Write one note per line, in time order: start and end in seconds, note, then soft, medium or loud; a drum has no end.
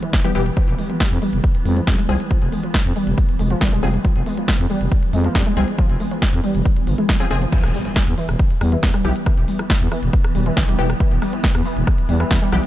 0.00 7.51 E3 medium
0.00 0.12 E3 loud
0.00 7.51 B3 medium
0.00 closed hi-hat medium
0.13 0.24 E3 loud
0.13 kick loud
0.13 snare loud
0.13 closed hi-hat medium
0.24 0.31 E3 medium
0.24 0.31 G3 loud
0.24 0.31 B3 medium
0.24 0.31 G4 loud
0.24 closed hi-hat soft
0.35 0.51 E1 medium
0.35 0.42 E3 loud
0.35 0.46 E3 medium
0.35 0.42 B3 medium
0.35 0.42 G4 loud
0.35 open hi-hat medium
0.46 closed hi-hat medium
0.57 0.61 F3 loud
0.57 kick loud
0.57 closed hi-hat medium
0.68 0.75 F1 loud
0.68 closed hi-hat soft
0.79 0.83 G#3 medium
0.79 open hi-hat loud
0.90 1.00 F3 medium
0.90 closed hi-hat soft
1.00 kick loud
1.00 snare loud
1.00 closed hi-hat medium
1.11 1.19 F2 medium
1.11 closed hi-hat soft
1.22 1.29 G3 loud
1.22 open hi-hat medium
1.33 1.41 F1 medium
1.33 closed hi-hat soft
1.44 kick loud
1.44 closed hi-hat medium
1.55 closed hi-hat medium
1.65 1.81 F2 medium
1.65 1.70 G#3 medium
1.65 open hi-hat loud
1.77 1.87 F3 loud
1.77 closed hi-hat soft
1.87 1.95 F2 medium
1.87 1.98 G3 loud
1.87 kick loud
1.87 snare loud
1.87 closed hi-hat medium
1.98 2.05 G#3 loud
1.98 closed hi-hat medium
2.09 2.17 C2 loud
2.09 2.16 F3 medium
2.09 2.19 G3 medium
2.09 2.16 C4 medium
2.09 2.16 G#4 medium
2.09 open hi-hat medium
2.20 closed hi-hat medium
2.31 2.35 F3 loud
2.31 kick loud
2.31 closed hi-hat medium
2.42 2.49 F1 loud
2.42 closed hi-hat soft
2.52 2.57 G#3 medium
2.52 open hi-hat loud
2.64 2.74 F3 medium
2.64 closed hi-hat soft
2.74 kick loud
2.74 snare loud
2.74 closed hi-hat medium
2.85 2.93 F2 medium
2.85 closed hi-hat medium
2.96 3.03 G3 loud
2.96 open hi-hat medium
3.07 3.15 F1 medium
3.07 closed hi-hat soft
3.18 kick loud
3.18 closed hi-hat medium
3.29 closed hi-hat soft
3.39 3.55 F1 medium
3.39 3.44 G#3 medium
3.39 open hi-hat loud
3.51 3.61 F3 loud
3.51 closed hi-hat soft
3.61 3.69 G#1 loud
3.61 3.72 G3 loud
3.61 kick loud
3.61 snare loud
3.61 closed hi-hat medium
3.72 3.80 F1 medium
3.72 3.79 G#3 loud
3.72 closed hi-hat medium
3.83 3.98 F1 medium
3.83 3.89 F3 medium
3.83 3.93 G3 medium
3.83 3.89 C4 medium
3.83 3.89 G#4 medium
3.83 open hi-hat medium
3.94 closed hi-hat medium
4.05 4.09 F3 loud
4.05 kick loud
4.05 closed hi-hat medium
4.16 4.23 F1 loud
4.16 closed hi-hat soft
4.26 4.31 G#3 medium
4.26 open hi-hat loud
4.38 4.48 F3 medium
4.38 closed hi-hat medium
4.48 kick loud
4.48 snare loud
4.48 closed hi-hat medium
4.59 4.67 F2 medium
4.59 closed hi-hat medium
4.70 4.77 G3 loud
4.70 open hi-hat medium
4.81 4.88 F1 medium
4.81 closed hi-hat soft
4.92 kick loud
4.92 closed hi-hat medium
5.03 closed hi-hat medium
5.13 5.29 F2 medium
5.13 5.18 G#3 medium
5.13 open hi-hat loud
5.24 5.34 F3 loud
5.24 closed hi-hat medium
5.35 5.43 F2 medium
5.35 5.46 G3 loud
5.35 kick loud
5.35 snare loud
5.35 closed hi-hat medium
5.46 5.53 G#3 loud
5.46 closed hi-hat medium
5.57 5.65 C2 loud
5.57 5.63 F3 medium
5.57 5.67 G3 medium
5.57 5.63 C4 medium
5.57 5.63 G#4 medium
5.57 open hi-hat medium
5.68 closed hi-hat medium
5.79 5.83 F3 loud
5.79 kick loud
5.79 closed hi-hat medium
5.90 5.97 F1 loud
5.90 closed hi-hat soft
6.00 6.04 G#3 medium
6.00 open hi-hat loud
6.11 6.21 F3 medium
6.11 closed hi-hat medium
6.22 kick loud
6.22 snare loud
6.22 closed hi-hat medium
6.33 6.41 F2 medium
6.33 closed hi-hat medium
6.44 6.51 G3 loud
6.44 open hi-hat medium
6.55 6.62 F1 medium
6.55 closed hi-hat medium
6.65 kick loud
6.65 closed hi-hat medium
6.77 closed hi-hat medium
6.87 6.95 G1 medium
6.87 6.91 F3 medium
6.87 open hi-hat loud
6.98 7.05 G#3 loud
6.98 closed hi-hat medium
7.09 7.16 F3 medium
7.09 kick loud
7.09 snare loud
7.09 closed hi-hat medium
7.20 7.26 F3 medium
7.20 7.27 F3 medium
7.20 7.26 C4 medium
7.20 7.26 G#4 loud
7.20 closed hi-hat medium
7.31 7.46 F1 loud
7.31 7.41 D#3 loud
7.31 7.37 F3 loud
7.31 7.37 C4 medium
7.31 7.37 G#4 loud
7.31 open hi-hat medium
7.42 7.52 F3 loud
7.42 closed hi-hat medium
7.52 12.67 E3 medium
7.52 7.57 E3 loud
7.52 12.67 B3 medium
7.52 kick loud
7.52 closed hi-hat medium
7.52 crash loud
7.52 impact medium
7.64 7.71 E1 loud
7.64 cross-stick medium
7.64 closed hi-hat medium
7.74 7.78 G3 medium
7.74 open hi-hat loud
7.85 7.95 E3 medium
7.85 closed hi-hat medium
7.96 kick loud
7.96 cross-stick medium
7.96 snare loud
7.96 closed hi-hat medium
8.07 8.15 E2 medium
8.07 closed hi-hat medium
8.18 8.25 E3 loud
8.18 open hi-hat loud
8.29 8.36 E1 medium
8.29 cross-stick medium
8.29 closed hi-hat medium
8.39 kick loud
8.39 closed hi-hat medium
8.51 closed hi-hat medium
8.61 8.77 E2 medium
8.61 8.65 G3 medium
8.61 cross-stick medium
8.61 open hi-hat loud
8.72 8.82 E3 loud
8.72 closed hi-hat medium
8.83 8.91 E2 medium
8.83 kick loud
8.83 snare loud
8.83 closed hi-hat medium
8.94 9.01 G3 loud
8.94 cross-stick medium
8.94 closed hi-hat medium
9.05 9.12 B1 loud
9.05 9.11 E3 medium
9.05 9.15 E3 medium
9.05 9.11 B3 medium
9.05 9.11 G4 medium
9.05 open hi-hat loud
9.16 closed hi-hat medium
9.26 9.31 E3 loud
9.26 kick loud
9.26 cross-stick medium
9.26 closed hi-hat medium
9.38 9.45 E1 loud
9.38 closed hi-hat medium
9.48 9.52 G3 medium
9.48 open hi-hat loud
9.59 9.69 E3 medium
9.59 cross-stick medium
9.59 closed hi-hat medium
9.70 kick loud
9.70 snare loud
9.70 closed hi-hat medium
9.81 9.88 E2 medium
9.81 closed hi-hat medium
9.92 9.99 E3 loud
9.92 cross-stick medium
9.92 open hi-hat loud
10.03 10.10 E1 medium
10.03 closed hi-hat medium
10.13 kick loud
10.13 closed hi-hat medium
10.24 cross-stick medium
10.24 closed hi-hat medium
10.35 10.51 E1 medium
10.35 10.39 G3 medium
10.35 open hi-hat loud
10.46 10.56 E3 loud
10.46 closed hi-hat medium
10.57 10.65 G1 loud
10.57 10.67 E3 loud
10.57 kick loud
10.57 cross-stick medium
10.57 snare loud
10.57 closed hi-hat medium
10.68 10.75 E1 medium
10.68 10.75 G3 loud
10.68 closed hi-hat medium
10.79 10.94 E1 loud
10.79 10.89 E3 medium
10.79 10.85 E3 medium
10.79 10.85 B3 medium
10.79 10.85 G4 medium
10.79 open hi-hat medium
10.90 cross-stick medium
10.90 closed hi-hat medium
11.00 11.04 E3 loud
11.00 kick loud
11.00 closed hi-hat medium
11.11 11.19 E1 loud
11.11 closed hi-hat medium
11.22 11.26 G3 medium
11.22 cross-stick medium
11.22 open hi-hat loud
11.33 11.43 E3 medium
11.33 closed hi-hat medium
11.44 kick loud
11.44 snare loud
11.44 closed hi-hat medium
11.55 11.62 E2 medium
11.55 cross-stick medium
11.55 closed hi-hat medium
11.66 11.73 E3 loud
11.66 open hi-hat loud
11.77 11.84 E1 medium
11.77 closed hi-hat medium
11.87 kick loud
11.87 cross-stick medium
11.87 closed hi-hat medium
11.98 closed hi-hat medium
12.09 12.24 E2 medium
12.09 12.13 G3 medium
12.09 open hi-hat loud
12.20 12.30 E3 loud
12.20 cross-stick medium
12.20 closed hi-hat medium
12.31 12.39 E2 medium
12.31 12.41 E3 loud
12.31 kick loud
12.31 snare loud
12.31 closed hi-hat medium
12.42 12.49 G3 loud
12.42 closed hi-hat medium
12.52 12.60 B1 loud
12.52 12.63 E3 medium
12.52 12.59 E3 medium
12.52 12.59 B3 medium
12.52 12.59 G4 medium
12.52 cross-stick medium
12.52 open hi-hat loud
12.64 closed hi-hat medium